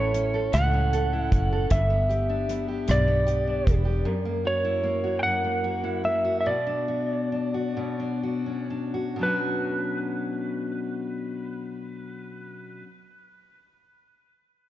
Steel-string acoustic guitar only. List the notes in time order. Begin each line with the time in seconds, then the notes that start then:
Already playing: A2 C#4 E4 A4
0.14 C#4
0.34 A4
0.54 A2
0.74 C#4
0.93 A4
1.13 E4
1.33 C#4
1.53 A4
1.71 G2
1.90 B3
2.09 G4
2.29 D4
2.49 B3
2.68 G4
2.88 G2
3.08 B3
3.27 G4
3.47 D4
3.67 B3
3.85 G4
4.05 F#2
4.25 A#3
4.45 F#4
4.65 E4
4.83 A#3
5.04 F#4
5.24 F#2
5.44 A#3
5.64 F#4
5.84 E4
6.04 A#3
6.25 F#4
6.46 B2
6.67 D4
6.88 F#4
7.32 D4
7.54 F#4
7.77 B2
8.00 D4
8.23 F#4
8.46 C#4
8.70 D4
8.94 F#4
9.16 B2 F#3
9.21 C#4 D4
9.25 F#4